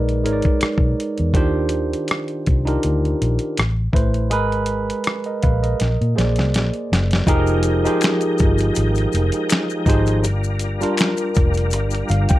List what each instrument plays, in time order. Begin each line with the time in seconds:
Already playing: fingered electric bass A#1, tine electric piano G#3 D#4 A#4 B4 D5
0.09 closed hi-hat
0.24 fingered electric bass G#1, tine electric piano G#3 D#4 A#4 C#5, closed hi-hat
0.33 tine electric piano D5
0.42 kick, closed hi-hat
0.61 muted fingered electric bass stroke, cross-stick, closed hi-hat
0.78 fingered electric bass B1, kick
1.00 closed hi-hat
1.18 fingered electric bass E2, closed hi-hat
1.34 fingered electric bass D#2, tine electric piano D#3 D4 F4 G4 C5, kick, closed hi-hat
1.69 closed hi-hat
1.93 closed hi-hat
2.08 cross-stick, closed hi-hat
2.28 closed hi-hat
2.46 fingered electric bass C2, kick, closed hi-hat
2.65 tine electric piano D4 D#4 F4 G4 A#4, closed hi-hat
2.83 fingered electric bass D2, closed hi-hat
3.05 closed hi-hat
3.22 fingered electric bass A#1, closed hi-hat
3.39 closed hi-hat
3.57 fingered electric bass A1, cross-stick, closed hi-hat
3.93 fingered electric bass A1, tine electric piano A3 E4 B4 C5, kick, closed hi-hat
4.14 closed hi-hat
4.30 fingered electric bass G#1, tine electric piano G#3 G#4 A#4 B4, closed hi-hat
4.52 closed hi-hat
4.66 closed hi-hat
4.90 closed hi-hat
5.04 cross-stick, closed hi-hat
5.24 tine electric piano A#4 D#5, closed hi-hat
5.43 fingered electric bass A#1, tine electric piano B4 F5, kick, closed hi-hat
5.63 tine electric piano A#4 D#5, closed hi-hat
5.80 fingered electric bass A#1, snare, closed hi-hat
6.01 fingered electric bass A#2, closed hi-hat
6.15 fingered electric bass A#1, tine electric piano A#3 G#4 C5 D5, snare, closed hi-hat
6.36 fingered electric bass C2, snare, closed hi-hat
6.54 fingered electric bass A#1, snare, closed hi-hat
6.74 closed hi-hat
6.92 fingered electric bass F#1, snare, closed hi-hat
7.11 snare, closed hi-hat
7.27 fingered electric bass F1, tine electric piano F3 D#4 G4 G#4 A#4, tonewheel organ F3 G#3 D#4 A#4 G5, kick, closed hi-hat, maracas
7.47 maracas
7.63 closed hi-hat, maracas
7.84 tine electric piano F3 D#4 G4 G#4 C5, closed hi-hat, maracas
8.01 finger snap, snare, closed hi-hat, maracas
8.05 finger snap
8.21 closed hi-hat, maracas
8.38 fingered electric bass G1, kick, closed hi-hat, maracas
8.58 closed hi-hat, maracas
8.75 fingered electric bass G#1, closed hi-hat, maracas
8.95 closed hi-hat, maracas
9.12 fingered electric bass F1, closed hi-hat, maracas
9.32 closed hi-hat, maracas
9.50 finger snap, snare, closed hi-hat, maracas
9.53 finger snap
9.70 maracas
9.86 fingered electric bass G#1, tine electric piano F3 D#4 G4 G#4 C5, kick, closed hi-hat, maracas
10.06 closed hi-hat, maracas
10.23 fingered electric bass G1, tonewheel organ G3 D4 F4, closed hi-hat, maracas
10.44 maracas
10.59 closed hi-hat, maracas
10.80 tine electric piano G3 D4 F4 A#4, closed hi-hat, maracas
10.97 finger snap, snare, closed hi-hat, maracas
11.02 finger snap
11.17 closed hi-hat, maracas
11.35 fingered electric bass F1, kick, closed hi-hat, maracas
11.54 closed hi-hat, maracas
11.71 fingered electric bass G1, closed hi-hat, maracas
11.91 closed hi-hat, maracas
12.09 fingered electric bass G1, tine electric piano F5, closed hi-hat, maracas
12.29 tine electric piano G5, kick, closed hi-hat, maracas